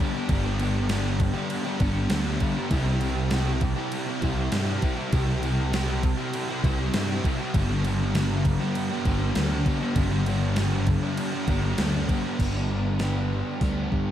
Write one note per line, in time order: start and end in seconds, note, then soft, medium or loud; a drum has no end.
0.00 0.15 G2 medium
0.00 0.15 D3 medium
0.00 0.16 G3 medium
0.00 0.15 B3 medium
0.00 0.14 D4 medium
0.00 0.13 G4 medium
0.00 crash medium
0.13 0.30 G3 medium
0.13 0.29 B3 medium
0.13 0.30 D4 medium
0.13 0.31 G4 medium
0.28 1.30 G1 loud
0.28 0.75 G2 medium
0.28 0.75 D3 loud
0.28 0.46 G3 medium
0.28 0.44 B3 medium
0.28 0.44 D4 medium
0.28 0.43 G4 loud
0.28 kick loud
0.28 crash medium
0.43 0.58 G3 medium
0.43 0.58 B3 medium
0.43 0.60 D4 medium
0.43 0.61 G4 medium
0.59 0.89 G3 medium
0.59 0.89 B3 medium
0.59 0.91 D4 medium
0.59 0.91 G4 medium
0.59 crash medium
0.89 1.50 G2 medium
0.89 1.51 D3 medium
0.89 1.19 G3 medium
0.89 1.19 B3 loud
0.89 1.20 D4 medium
0.89 1.20 G4 loud
0.89 snare loud
0.89 crash medium
1.20 muted overdriven electric guitar stroke medium
1.20 kick medium
1.20 crash medium
1.34 1.66 G3 medium
1.34 1.65 B3 medium
1.34 1.64 D4 medium
1.34 1.63 G4 medium
1.50 crash medium
1.64 1.78 G3 medium
1.64 1.78 B3 medium
1.64 1.80 D4 medium
1.64 1.81 G4 medium
1.78 2.06 G1 medium
1.78 2.11 G3 medium
1.78 2.10 B3 medium
1.78 2.12 D4 medium
1.78 2.12 G4 medium
1.78 kick loud
1.78 crash medium
2.10 2.36 D2 medium
2.10 2.56 G2 medium
2.10 2.56 D3 loud
2.10 2.27 G3 medium
2.10 2.25 B3 loud
2.10 2.26 D4 loud
2.10 2.24 G4 loud
2.10 snare loud
2.10 crash loud
2.25 2.39 G3 medium
2.25 2.39 B3 medium
2.25 2.42 D4 medium
2.25 2.42 G4 medium
2.40 2.57 G3 medium
2.40 2.56 B3 medium
2.40 2.56 D4 medium
2.40 2.54 G4 medium
2.40 kick medium
2.40 crash medium
2.55 2.70 G3 medium
2.55 2.70 B3 medium
2.55 2.71 D4 medium
2.55 2.72 G4 medium
2.69 3.72 C2 loud
2.69 3.29 C3 loud
2.69 2.99 G3 loud
2.69 2.88 C4 loud
2.69 2.86 E4 loud
2.69 2.84 G4 medium
2.69 kick loud
2.69 crash medium
2.85 3.00 C4 medium
2.85 3.02 E4 medium
2.85 3.03 G4 medium
3.00 3.31 G3 medium
3.00 3.31 C4 medium
3.00 3.32 E4 medium
3.00 3.33 G4 medium
3.00 crash medium
3.30 4.51 C3 medium
3.30 3.61 G3 loud
3.30 3.62 C4 medium
3.30 3.62 E4 loud
3.30 3.62 G4 loud
3.30 snare loud
3.30 crash medium
3.61 muted overdriven electric guitar stroke soft
3.61 kick medium
3.61 crash medium
3.76 4.08 C4 medium
3.76 4.07 E4 medium
3.76 4.05 G4 medium
3.92 crash medium
4.06 4.21 C4 medium
4.06 4.22 E4 medium
4.06 4.24 G4 medium
4.21 4.47 C2 loud
4.21 4.52 G3 medium
4.21 4.52 C4 medium
4.21 4.53 E4 medium
4.21 4.54 G4 medium
4.21 kick medium
4.21 crash medium
4.52 4.77 G2 medium
4.52 4.97 C3 loud
4.52 4.81 G3 medium
4.52 4.68 C4 medium
4.52 4.67 E4 loud
4.52 4.66 G4 loud
4.52 snare loud
4.52 crash medium
4.66 4.81 C4 medium
4.66 4.82 E4 medium
4.66 4.84 G4 medium
4.81 5.12 G3 medium
4.81 4.98 C4 medium
4.81 4.97 E4 medium
4.81 4.95 G4 medium
4.81 kick medium
4.81 crash medium
4.96 5.12 C4 medium
4.96 5.13 E4 medium
4.96 5.14 G4 medium
5.12 6.13 C2 loud
5.12 5.58 C3 medium
5.12 5.41 G3 medium
5.12 5.29 C4 loud
5.12 5.27 E4 loud
5.12 5.26 G4 loud
5.12 kick loud
5.12 crash medium
5.27 5.42 C4 medium
5.27 5.43 E4 medium
5.27 5.45 G4 medium
5.42 5.72 G3 medium
5.42 5.72 C4 medium
5.42 5.73 E4 medium
5.42 5.75 G4 medium
5.42 crash medium
5.72 6.33 C3 loud
5.72 6.03 G3 loud
5.72 6.03 C4 loud
5.72 6.03 E4 loud
5.72 6.04 G4 loud
5.72 snare loud
5.72 crash medium
6.03 muted overdriven electric guitar stroke medium
6.03 kick medium
6.03 crash medium
6.17 6.50 C4 medium
6.17 6.49 E4 medium
6.17 6.48 G4 medium
6.34 crash medium
6.49 6.63 C4 medium
6.49 6.64 E4 medium
6.49 6.65 G4 medium
6.63 6.89 C2 medium
6.63 6.94 G3 medium
6.63 6.94 C4 medium
6.63 6.94 E4 medium
6.63 6.96 G4 medium
6.63 kick medium
6.63 crash medium
6.93 7.19 G2 medium
6.93 7.39 C3 medium
6.93 7.23 G3 loud
6.93 7.11 C4 loud
6.93 7.09 E4 loud
6.93 7.08 G4 loud
6.93 snare loud
6.93 crash loud
7.09 7.23 C4 medium
7.09 7.25 E4 medium
7.09 7.26 G4 medium
7.23 7.55 G3 medium
7.23 7.41 C4 medium
7.23 7.39 E4 medium
7.23 7.38 G4 medium
7.23 kick loud
7.23 crash medium
7.38 7.54 C4 medium
7.38 7.53 E4 medium
7.38 7.57 G4 medium
7.54 8.55 G1 medium
7.54 8.13 G2 medium
7.54 8.00 D3 loud
7.54 7.72 G3 loud
7.54 7.71 B3 loud
7.54 7.70 D4 loud
7.54 7.69 G4 medium
7.54 kick loud
7.54 crash medium
7.69 7.83 G3 medium
7.69 7.85 B3 medium
7.69 7.86 D4 medium
7.69 7.87 G4 medium
7.84 8.15 G3 medium
7.84 8.15 B3 medium
7.84 8.15 D4 medium
7.84 8.16 G4 medium
7.84 crash medium
8.13 9.34 G2 medium
8.13 8.75 D3 loud
8.13 8.45 G3 loud
8.13 8.45 B3 loud
8.13 8.45 D4 loud
8.13 8.45 G4 loud
8.13 snare loud
8.13 crash medium
8.45 muted overdriven electric guitar stroke soft
8.45 kick medium
8.45 crash medium
8.59 8.92 G3 medium
8.59 8.91 B3 medium
8.59 8.90 D4 medium
8.59 8.88 G4 medium
8.75 crash medium
8.89 9.04 G3 medium
8.89 9.05 B3 medium
8.89 9.06 D4 medium
8.89 9.07 G4 medium
9.04 9.31 G1 medium
9.04 9.35 G3 medium
9.04 9.36 B3 medium
9.04 9.37 D4 medium
9.04 9.37 G4 medium
9.04 kick medium
9.04 crash medium
9.34 9.61 D2 medium
9.34 9.95 G2 medium
9.34 9.81 D3 medium
9.34 9.52 G3 loud
9.34 9.51 B3 medium
9.34 9.50 D4 loud
9.34 9.49 G4 loud
9.34 snare loud
9.34 crash medium
9.50 9.65 G3 medium
9.50 9.66 B3 medium
9.50 9.67 D4 medium
9.50 9.68 G4 medium
9.65 9.82 G3 medium
9.65 9.81 B3 medium
9.65 9.80 D4 medium
9.65 9.79 G4 medium
9.65 kick medium
9.65 crash medium
9.80 9.95 G3 medium
9.80 9.96 B3 medium
9.80 9.96 D4 medium
9.80 9.97 G4 medium
9.95 10.97 G1 loud
9.95 10.41 G2 medium
9.95 10.42 D3 medium
9.95 10.12 G3 loud
9.95 10.12 B3 loud
9.95 10.10 D4 loud
9.95 10.10 G4 loud
9.95 kick loud
9.95 crash medium
10.11 10.25 G3 medium
10.11 10.27 B3 medium
10.11 10.28 D4 medium
10.11 10.29 G4 medium
10.26 10.57 G3 medium
10.26 10.57 B3 medium
10.26 10.58 D4 medium
10.26 10.58 G4 medium
10.26 crash medium
10.56 11.18 G2 loud
10.56 11.18 D3 medium
10.56 10.86 G3 loud
10.56 10.87 B3 loud
10.56 10.87 D4 loud
10.56 10.87 G4 medium
10.56 snare loud
10.56 crash medium
10.87 muted overdriven electric guitar stroke medium
10.87 kick medium
10.87 crash medium
11.02 11.33 G3 medium
11.02 11.32 B3 medium
11.02 11.31 D4 medium
11.02 11.30 G4 medium
11.17 crash medium
11.31 11.45 G3 medium
11.31 11.47 B3 medium
11.31 11.48 D4 medium
11.31 11.49 G4 medium
11.47 11.73 G1 medium
11.47 11.78 G3 medium
11.47 11.78 B3 medium
11.47 11.79 D4 medium
11.47 11.79 G4 medium
11.47 kick medium
11.47 crash medium
11.77 12.04 D2 medium
11.77 12.24 G2 medium
11.77 12.24 D3 medium
11.77 11.95 G3 medium
11.77 11.95 B3 medium
11.77 11.93 D4 loud
11.77 11.92 G4 loud
11.77 snare loud
11.77 crash loud
11.93 12.07 G3 medium
11.93 12.08 B3 medium
11.93 12.09 D4 medium
11.93 12.10 G4 medium
12.08 12.26 G3 medium
12.08 12.25 B3 medium
12.08 12.24 D4 medium
12.08 12.23 G4 medium
12.08 kick medium
12.08 crash medium
12.24 12.39 G3 medium
12.24 12.39 B3 medium
12.24 12.38 D4 medium
12.24 12.38 G4 medium
12.39 13.41 G1 medium
12.39 13.61 G2 medium
12.39 13.31 D3 medium
12.39 13.00 G3 medium
12.39 13.01 B3 loud
12.39 13.02 D4 loud
12.39 13.03 G4 loud
12.39 kick loud
12.39 open hi-hat soft
12.39 crash loud
12.99 13.62 G3 medium
12.99 13.62 B3 medium
12.99 13.64 D4 medium
12.99 13.64 G4 medium
12.99 snare loud
12.99 open hi-hat medium
13.61 13.87 D2 medium
13.61 14.11 G2 medium
13.61 14.11 D3 medium
13.61 14.11 G3 medium
13.61 14.11 B3 medium
13.61 14.11 D4 medium
13.61 14.11 G4 medium
13.61 kick loud
13.61 open hi-hat soft
13.92 14.11 G2 medium
13.92 kick medium